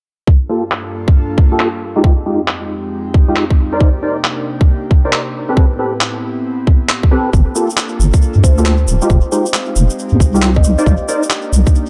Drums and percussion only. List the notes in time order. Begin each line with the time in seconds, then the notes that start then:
0.27 kick
0.72 clap
1.08 kick
1.38 kick
1.60 clap
2.04 kick
2.48 clap
3.14 kick
3.36 clap
3.50 kick
3.80 kick
4.25 clap
4.61 kick
4.91 kick
5.13 clap
5.57 kick
6.01 clap
6.67 kick
6.89 clap
7.03 kick
7.33 kick, cabasa
7.55 cabasa
7.70 cabasa
7.77 clap, cabasa
8.00 cabasa
8.14 kick, cabasa
8.22 cabasa
8.44 kick, cabasa
8.58 cabasa
8.66 clap, cabasa
8.88 cabasa
9.02 cabasa
9.10 kick, cabasa
9.32 cabasa
9.46 cabasa
9.54 clap, cabasa
9.76 cabasa
9.90 cabasa
9.99 cabasa
10.20 kick, cabasa
10.35 cabasa
10.42 clap, cabasa
10.56 kick
10.64 cabasa
10.78 cabasa
10.86 kick, cabasa
11.09 cabasa
11.23 cabasa
11.30 clap, cabasa
11.53 cabasa
11.67 kick, cabasa
11.75 cabasa